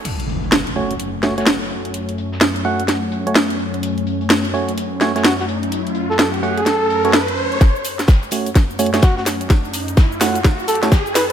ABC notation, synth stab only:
X:1
M:4/4
L:1/16
Q:"Swing 16ths" 1/4=127
K:F#m
V:1 name="Synth stab"
z6 [A,CFc] z3 [A,CFc] [A,CFc] z4 | z6 [A,CFf] z4 [A,CFc] z4 | z6 [A,CFc] z3 [A,CFc] [A,CFc] z4 | z6 [A,CFf] z4 [A,CFc] z4 |
z6 [A,CFc] z3 [A,CFc] [A,CFc] z4 | z6 [A,CFf] z4 [A,CFc] z4 |]